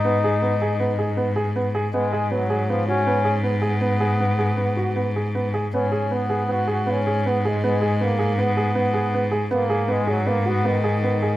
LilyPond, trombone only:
\new Staff \with { instrumentName = "Trombone" } { \time 5/4 \key gis \minor \tempo 4 = 158 dis'2.~ dis'8 r4. | gis4 fis4 eis8 cis'4. r8 b8~ | b2.~ b8 r4. | cis'4 b4 fis'8 fis'8 cis'4 b8 gis8 |
gis4 ais4 b4 b4. r8 | ais4 gis8 fis8 ais8 b8 dis2 | }